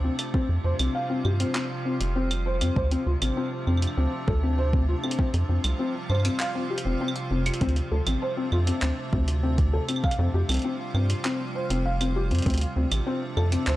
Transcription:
Already playing: D2 C3 F3 A3 D4
0.04 C4
0.19 closed hi-hat, claves
0.34 C3 G3 C4 F4, kick
0.49 F2
0.64 F2 C5
0.79 C2 C4, closed hi-hat, claves
0.95 F5
1.10 C4
1.25 G2 G4, claves
1.40 C4, closed hi-hat
1.55 C4, clap
1.85 C4
2.00 F1, closed hi-hat
2.16 C4
2.31 closed hi-hat, claves
2.46 C5
2.61 F2 C4, closed hi-hat, claves
2.76 D2 C3 A3 D4 C5, kick
2.91 C4, closed hi-hat
3.06 D2 F4
3.22 A1 C4, closed hi-hat, claves
3.37 C4
3.67 F2 C4, claves
3.77 claves
3.82 closed hi-hat
3.87 claves
3.97 D2 C4
4.28 D2 A4, kick
4.43 C4
4.58 C5
4.73 C4, kick
4.88 F4
5.03 C4, claves
5.11 closed hi-hat
5.19 G3 C4 F4, kick
5.34 F2, closed hi-hat
5.49 F2 C4
5.64 C2, closed hi-hat, claves
5.79 C4
6.09 G2 C5, claves
6.15 claves
6.20 claves
6.25 C4, closed hi-hat, claves
6.30 claves
6.35 claves
6.40 F5, clap
6.55 C4
6.70 G4
6.78 closed hi-hat
6.85 F1 C4
7.01 C4
7.08 claves
7.16 closed hi-hat
7.31 F1 C4
7.46 closed hi-hat, claves
7.54 closed hi-hat
7.61 D2 A3 C4 D4, kick, closed hi-hat
7.69 closed hi-hat
7.76 closed hi-hat
7.91 D2 A4
8.07 A1 C4, closed hi-hat, claves
8.22 C5
8.37 C4
8.52 F2 F4, claves
8.67 C4, closed hi-hat
8.82 D2 C4, clap
9.13 D2 C4, kick
9.28 closed hi-hat
9.43 C4
9.58 kick, closed hi-hat
9.73 A4
9.89 C4, closed hi-hat, claves
9.96 claves
10.04 G3 F4 F5, kick, claves
10.11 closed hi-hat, claves
10.19 F2 C4
10.34 F2 G4
10.49 C2 C4, closed hi-hat, claves
10.52 closed hi-hat
10.54 closed hi-hat
10.57 closed hi-hat
10.59 closed hi-hat
10.62 C4, closed hi-hat
10.94 G2 C4, claves
11.10 closed hi-hat
11.25 C4, clap
11.55 C5
11.70 F1 C4, closed hi-hat
11.85 F5
12.01 C4, closed hi-hat, claves
12.16 G4
12.31 F2 C4, closed hi-hat
12.35 closed hi-hat
12.39 closed hi-hat
12.42 D2 C3 F3 A3 C4 D4, kick, closed hi-hat
12.46 closed hi-hat
12.50 closed hi-hat
12.54 closed hi-hat
12.58 closed hi-hat
12.61 closed hi-hat
12.76 D2 C4
12.91 A1, closed hi-hat, claves
13.07 C4
13.37 F2 A4, claves
13.52 C4, closed hi-hat
13.67 D2 C5, clap

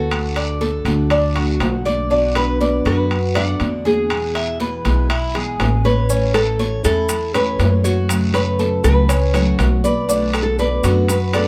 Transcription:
Already playing: D2 C#4 E4 F#4 A4
0.10 D3 A3 D4 F#4, high conga, high timbale, long guiro
0.36 D5, high conga, high timbale
0.61 A4, high conga, short guiro
0.85 D2 A3 D4 F#4, high conga, high timbale, short guiro
1.10 D4, muted steel-string acoustic guitar stroke, high conga, high timbale, long guiro
1.35 A3 D4 F#4, high conga, high timbale
1.60 B1 D3 A3 D4 F#4, high conga, high timbale, low timbale, short guiro
1.85 D5, high conga, short guiro
2.10 B2 D3 B3 D4 F#4, high conga, long guiro
2.35 B4, high conga, high timbale
2.61 D5, high conga, short guiro
2.85 F#2 D3 B3 D4 F#4 B4, high conga, high timbale, short guiro
3.10 muted steel-string acoustic guitar stroke, high conga, high timbale, long guiro
3.35 D3 B3 D4 F#4 D5 F#5, high conga, high timbale
3.60 E2 D3 B3 D4 F#4, high conga, high timbale, short guiro
3.85 G#4, high conga, short guiro
4.10 B2 E3 G#3 B3 E4, high conga, high timbale, long guiro
4.35 E5, high conga, high timbale
4.60 B4, high conga, short guiro
4.85 B1 E3 G#3 B3 E4, high conga, high timbale, short guiro
5.10 E4, muted steel-string acoustic guitar stroke, high timbale, long guiro
5.34 E3 G#3 B3 E4 G#4, high conga, high timbale
5.59 A1 E3 G#3 B3 E4, high conga, high timbale, low timbale, short guiro
5.84 B4 C#5, high conga, short guiro
6.09 E3 A3 C#4 E4, long guiro, maracas
6.34 A4, high conga, high timbale, maracas
6.59 C#5, high conga, short guiro, maracas
6.83 E2 A3 C#4 E4 A4, high conga, high timbale, short guiro, maracas
7.09 muted steel-string acoustic guitar stroke, high conga, high timbale, long guiro, maracas
7.34 A3 C#4 E4 B4 C#5, high conga, high timbale, maracas
7.59 F#2 E3 A3 C#4 E4, high conga, high timbale, low timbale, short guiro, maracas
7.84 F#4 C#5, high conga, short guiro, maracas
8.09 C#3 F#3 A3 C#4 F#4, high timbale, long guiro, maracas
8.34 B4 C#5, high conga, high timbale, maracas
8.59 A4, high conga, short guiro, maracas
8.83 C#2 F#3 A3 C#4 F#4 B4, high conga, high timbale, short guiro, maracas
9.09 C#4, muted steel-string acoustic guitar stroke, high conga, high timbale, long guiro, maracas
9.33 F#3 A3 C#4 F#4 C#5, high conga, high timbale, maracas
9.58 B1 F#3 C#4 F#4, high conga, high timbale, low timbale, short guiro, maracas
9.84 B4 D5, high conga, short guiro, maracas
10.08 B2 D3 A3 B3 D4 F#4, high conga, long guiro, maracas
10.34 A4, high conga, high timbale, maracas
10.43 A4
10.59 B4 D5, high conga, short guiro, maracas
10.83 F#2 D3 A3 B3 F#4, high conga, high timbale, short guiro, maracas
11.08 B4, muted steel-string acoustic guitar stroke, high conga, high timbale, long guiro, maracas
11.33 D3 A3 B3 F#4 A4 D5, high conga, high timbale, maracas

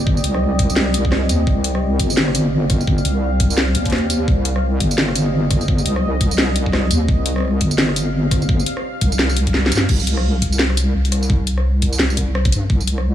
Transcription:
Already playing: G1 C4 G4 D5 D#5
0.07 kick
0.17 tambourine
0.24 C2, closed hi-hat
0.34 cross-stick
0.59 kick, closed hi-hat
0.70 tambourine
0.76 snare
0.94 closed hi-hat
1.05 kick
1.12 cross-stick, snare
1.29 D#2, closed hi-hat, tambourine
1.47 C2, kick
1.56 F5
1.64 closed hi-hat
1.75 cross-stick
2.00 G1, kick, closed hi-hat
2.10 tambourine
2.17 snare
2.28 cross-stick
2.35 closed hi-hat, tambourine
2.70 kick, cross-stick, closed hi-hat
2.81 tambourine
2.87 kick
2.98 tambourine
3.05 C2, closed hi-hat
3.40 kick, closed hi-hat
3.50 tambourine
3.58 snare
3.75 D#2, closed hi-hat
3.85 kick, closed hi-hat
3.90 cross-stick, snare, closed hi-hat
3.92 closed hi-hat
3.96 closed hi-hat
3.98 closed hi-hat
4.10 closed hi-hat, tambourine
4.28 C2, kick
4.38 D#5
4.45 closed hi-hat
4.56 cross-stick
4.80 G1, kick, closed hi-hat
4.91 tambourine
4.98 snare
5.08 cross-stick
5.15 closed hi-hat, tambourine
5.51 kick, cross-stick, closed hi-hat
5.61 tambourine
5.68 kick
5.78 tambourine
5.85 C2, closed hi-hat
5.96 cross-stick
6.21 kick, closed hi-hat
6.31 tambourine
6.38 snare
6.56 closed hi-hat
6.66 kick
6.73 cross-stick, snare
6.91 D#2, closed hi-hat, tambourine
7.08 C2, kick
7.19 F5
7.26 closed hi-hat
7.36 cross-stick
7.38 cross-stick
7.40 cross-stick
7.42 cross-stick
7.45 cross-stick
7.48 cross-stick
7.51 cross-stick
7.61 G1, kick, closed hi-hat
7.71 tambourine
7.78 snare
7.89 cross-stick
7.96 closed hi-hat, tambourine
8.31 kick, cross-stick, closed hi-hat
8.42 tambourine
8.49 kick
8.60 tambourine
8.66 closed hi-hat
8.77 cross-stick
9.01 C2, kick, closed hi-hat
9.12 tambourine
9.19 snare
9.29 tambourine
9.37 closed hi-hat
9.47 kick, closed hi-hat
9.54 snare
9.66 snare
9.72 G2, closed hi-hat, tambourine
9.75 snare, tambourine
9.77 tambourine
9.89 C2, kick, crash
10.00 tambourine
10.07 closed hi-hat
10.17 cross-stick
10.42 C2, kick, closed hi-hat
10.52 tambourine
10.59 snare
10.70 cross-stick
10.77 closed hi-hat, tambourine
10.95 C2
11.05 closed hi-hat
11.12 cross-stick, closed hi-hat
11.23 tambourine
11.30 kick
11.47 closed hi-hat
11.58 cross-stick
11.82 kick, closed hi-hat
11.93 tambourine
11.99 C2, snare
12.10 tambourine
12.17 kick, closed hi-hat
12.35 cross-stick
12.45 kick, closed hi-hat
12.52 G2, closed hi-hat, tambourine
12.70 C2, kick
12.80 tambourine
12.87 closed hi-hat
12.98 cross-stick

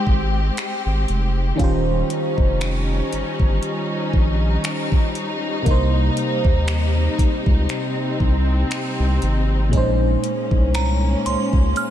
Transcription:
Already playing: G#3 C4 D#4 G4 C5 C6
0.07 G#1, kick
0.57 finger snap, closed hi-hat
0.86 G#1
1.08 F1, closed hi-hat
1.55 D#3 G3 C#4 D#4, kick
1.59 D#1 F4 G4, closed hi-hat
1.64 C5
2.10 closed hi-hat
2.38 F1, kick
2.61 finger snap, closed hi-hat
3.13 G1, closed hi-hat
3.40 G1, kick
3.63 closed hi-hat
4.13 A#1, kick
4.64 finger snap, closed hi-hat
4.92 kick
5.15 closed hi-hat
5.62 C3 A#3, kick, closed hi-hat
5.66 C2 D#4
5.71 C5
6.17 closed hi-hat
6.45 D#2, kick
6.68 finger snap, closed hi-hat
7.19 C#2, kick, closed hi-hat
7.46 C#2, kick
7.69 C4, finger snap, closed hi-hat
8.20 C2, kick
8.71 finger snap, closed hi-hat
8.99 C2
9.22 G#1, closed hi-hat
9.69 A#2 G#3, kick, closed hi-hat
9.73 A#1 G#3 A#3 C#4 D#4
9.77 C5
10.24 closed hi-hat
10.51 C2, kick
10.74 A#5, finger snap, closed hi-hat
11.26 C#2 C6, closed hi-hat
11.53 C#2, kick
11.76 F6, closed hi-hat

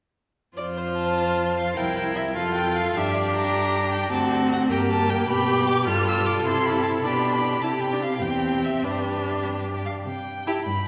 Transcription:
0.56 F2 F4 C5 D5
0.77 C5
0.98 A5
1.58 F5
1.77 C2 E4 A#4 G5
1.96 G5
2.15 E5
2.35 F2 F4 A4 F5
2.55 G5
2.76 F5
2.95 G2 D4 G4 E5
3.15 D5
3.36 A#5
3.93 G5
4.12 D2 C4 F#4 A5
4.32 A5
4.53 F#5
4.69 G2 A#3 G4 G5
4.90 A5
5.10 G5
5.28 B2 G4 B5
5.68 D6
5.86 G2 F4 A4 F6
6.08 E6
6.26 D6
6.45 C3 E4 C6
6.66 B5
6.84 A5
7.02 B2 D4 G4 B5
7.62 C3 E4 G4 A5
7.82 G5
7.93 D4
8.03 F5
8.22 E2 C4 G4 G5
8.64 E5
8.84 G2 D4 G4 B4
8.91 C5
8.97 B4
9.85 F5
10.06 C3 G5
10.47 E4 G4 A5
10.66 G2 B5

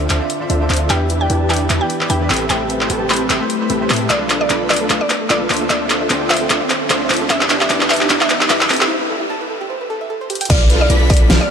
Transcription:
Already playing: D3 C4 F4 E5, riser
0.10 D2 D4 F4 A4 C5 E5, clap, closed hi-hat
0.20 D3 D4 F4 C5 E5
0.30 closed hi-hat
0.40 D3 D4 F4 C5 E5
0.50 D2 D4 F4 A4 C5 E5, closed hi-hat
0.60 D3 D4 F4 C5 E5
0.70 D2 D4 F4 A4 C5 E5, clap, closed hi-hat
0.73 closed hi-hat
0.76 closed hi-hat
0.89 E2 E3 B3 D4 E4 G4 B4 D5 E5 G5, clap, closed hi-hat
1.10 closed hi-hat
1.20 E3 E4 G4 B4 D5 G5
1.30 E2 D4 E4 G4 B4 A5, closed hi-hat
1.49 E3 E4 G4 B4 D5 G5, clap, closed hi-hat
1.54 closed hi-hat
1.56 closed hi-hat
1.70 E2 D4 E4 G4 B4 E5, clap, closed hi-hat
1.80 E3 E4 G4 B4 D5 G5
1.90 closed hi-hat
2.00 E3 E4 G4 B4 D5, clap
2.10 E2 D4 E4 G4 B4 E5 G5, closed hi-hat
2.20 E3 E4 G4 B4 D5
2.30 A1 A3 C4 G4 A4 B4 E5, clap, closed hi-hat
2.34 closed hi-hat
2.37 closed hi-hat
2.49 A1 A3 C4 E4 G4 A4 B4 C5 E5 G5, clap, closed hi-hat
2.70 closed hi-hat
2.80 A3 E4 G4 B4 C5, clap
2.90 A1 C4 G4 A4 B4 A5, closed hi-hat
3.09 A3 E4 G4 B4 C5 B5, clap, closed hi-hat
3.13 closed hi-hat
3.16 closed hi-hat
3.30 A1 C4 G4 A4 B4 E5, clap, closed hi-hat
3.40 A3 E4 G4 B4 C5
3.50 closed hi-hat
3.60 A3 E4 G4 B4 C5
3.70 A1 C4 G4 A4 B4 E5, closed hi-hat
3.80 A3 E4 G4 B4 C5
3.90 A2 C4 G4 A4 B4 E5, clap, closed hi-hat
3.93 closed hi-hat
3.96 closed hi-hat
4.10 B1 B3 D4 F4 A4 B4 D5 F5, clap, closed hi-hat
4.21 D5
4.30 B4, clap, closed hi-hat
4.41 A4 D5
4.50 B1 D4 F4 A4 B4 B5 D6, clap, closed hi-hat
4.61 D5
4.70 B4 D5, clap, closed hi-hat
4.73 closed hi-hat
4.76 closed hi-hat
4.81 A4
4.90 B1 D4 F4 A4 B4 F5, clap, closed hi-hat
5.01 D5
5.10 B4, clap, closed hi-hat
5.21 A4
5.30 B1 D4 F4 A4 B4 D5 F5 D6, clap, closed hi-hat
5.41 D5
5.50 D2 D3 C4 D4 F4 A4 C5 E5, clap, closed hi-hat, open hi-hat
5.57 closed hi-hat
5.61 A4
5.70 D2 D4 F4 A4 C5 D5 E5, clap, closed hi-hat
5.81 D5
5.90 C5, clap, closed hi-hat
6.01 A4
6.10 D2 D4 F4 A4 C5 G5 C6, clap, closed hi-hat
6.21 D5
6.30 C5 E5, clap, closed hi-hat
6.34 closed hi-hat
6.37 closed hi-hat
6.41 A4
6.50 D2 D4 F4 A4 C5 E5, clap, closed hi-hat
6.61 D5
6.70 C5, clap, closed hi-hat
6.81 A4
6.90 D2 D4 F4 A4 C5 E5 C6, clap, closed hi-hat
7.01 D5
7.10 D2 D4 F4 A4 C5 E5, clap, closed hi-hat, open hi-hat
7.17 closed hi-hat
7.21 A4
7.30 E2 E3 B3 D4 E4 G4 B4 E5, clap, closed hi-hat
7.41 D5, clap
7.50 B4, clap, closed hi-hat
7.61 G4 E5, clap
7.70 E2 D4 E4 G4 B4 A5 D6, clap, closed hi-hat
7.81 D5, clap
7.90 B4 E5, clap, closed hi-hat
7.93 closed hi-hat
7.96 closed hi-hat
8.01 G4, clap
8.10 E2 D4 E4 G4 B4 E5, clap, closed hi-hat
8.21 D5 E5, clap
8.30 B4, clap, closed hi-hat
8.41 G4, clap
8.50 E2 D4 E4 G4 B4 E5 D6, clap, closed hi-hat
8.61 D5, clap
8.70 A1 A3 C4 G4 A4 B4 E5, clap, closed hi-hat, open hi-hat
8.76 closed hi-hat
8.81 G4, clap
8.90 C5
9.01 B4
9.10 A4
9.21 G4
9.30 A5
9.41 B4
9.50 A4
9.61 G4
9.70 C5
9.81 B4
9.90 A4
10.01 E5
10.10 A4
10.21 C5
10.30 G4, closed hi-hat
10.35 closed hi-hat
10.41 G5, closed hi-hat
10.45 closed hi-hat
10.50 B1 D4 F4 A4 B4 D5 F5 F6, kick, closed hi-hat, crash, downlifter
10.61 D5
10.70 B4, closed hi-hat
10.81 A4 D5
10.90 B1 D4 F4 A4 B4 B5 D6 B6, closed hi-hat
11.01 D5
11.10 B4 D5, kick, closed hi-hat, open hi-hat
11.17 closed hi-hat
11.21 A4
11.30 B1 D4 F4 A4 B4 F5 F6, snare, closed hi-hat
11.41 D5

